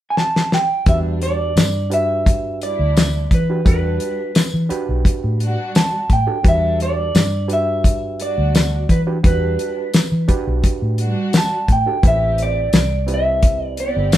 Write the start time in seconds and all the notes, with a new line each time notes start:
0.10 G#5
0.17 A5, snare
0.36 snare
0.52 G5, snare
0.86 E2 G3 D4 F#4 G4 B4 E5, kick, closed hi-hat
1.22 D5, closed hi-hat
1.56 G2, snare, closed hi-hat, tambourine
1.90 D4 F#4 G4 B4 E5, closed hi-hat
2.26 kick, closed hi-hat
2.62 G3 D4 E4 D5, closed hi-hat
2.79 D2
2.97 snare, closed hi-hat, tambourine
3.31 E3 B4, kick, closed hi-hat
3.50 D4 F#4 G4 B4
3.65 E2 G3 D4 F#4 G4 B4, kick, closed hi-hat
4.00 closed hi-hat
4.35 snare, closed hi-hat, tambourine
4.54 E3
4.69 D4 F#4 G4 B4, muted fingered electric bass stroke, closed hi-hat
4.89 B1
5.05 kick, closed hi-hat
5.24 A2
5.40 G3 D4 F#4, closed hi-hat
5.75 A5, snare, closed hi-hat, tambourine
6.10 A2 G5, kick, closed hi-hat
6.27 D4 F#4 G4 A4
6.43 E2 G3 D4 F#4 G4 A4 B4, kick, closed hi-hat
6.48 E5
6.80 D5, closed hi-hat
7.15 G2, snare, closed hi-hat, tambourine
7.48 D4 F#4 G4 B4, closed hi-hat
7.53 E5
7.84 kick, closed hi-hat
8.20 G3 D4 F#4 D5, closed hi-hat
8.38 D2
8.55 snare, closed hi-hat, tambourine
8.89 E3 B4, kick, closed hi-hat
9.07 D4 F#4 G4 B4
9.23 E2 G3 D4 F#4 G4 B4, kick, closed hi-hat
9.59 closed hi-hat
9.94 snare, closed hi-hat, tambourine
10.12 E3
10.28 D4 F#4 G4 B4, muted fingered electric bass stroke, kick, closed hi-hat
10.47 B1
10.64 kick, closed hi-hat
10.82 A2
10.98 G3 D4 F#4, closed hi-hat
11.33 snare, closed hi-hat, tambourine
11.38 A5
11.68 A2, kick, closed hi-hat
11.72 G5
11.86 D4 F#4 G4 A4
12.03 A1 C4 E4 G4 B4, kick, closed hi-hat
12.07 E5
12.38 closed hi-hat
12.42 D5
12.73 C2, snare, closed hi-hat, tambourine
13.07 C4 E4 G4 B4, closed hi-hat
13.14 E5
13.43 kick, closed hi-hat
13.65 D5
13.77 B3 C4 G4 D5, closed hi-hat
13.96 G1
14.12 snare, closed hi-hat, tambourine